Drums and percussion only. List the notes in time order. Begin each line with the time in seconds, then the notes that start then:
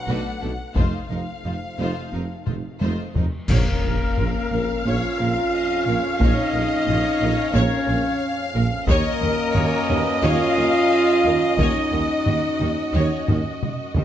0.07 taiko
0.76 taiko
2.47 taiko mid
2.81 taiko high
3.16 taiko low
3.48 concert bass drum, taiko, crash
4.17 taiko low-mid
6.21 taiko
6.87 taiko low-mid
8.87 taiko
9.55 taiko low-mid
11.58 taiko
12.26 taiko low-mid
13.28 taiko low-mid
13.63 taiko mid
13.96 taiko low